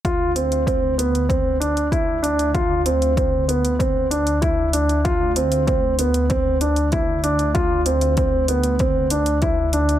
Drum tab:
HH |x-xxx-xxx-xxx-xx|x-xxx-xxx-xxx-xx|x-xxx-xxx-xxx-xx|x-xxx-xxx-xxx-xx|
BD |o---o---o---o---|o---o---o---o---|o---o---o---o---|o---o---o---o---|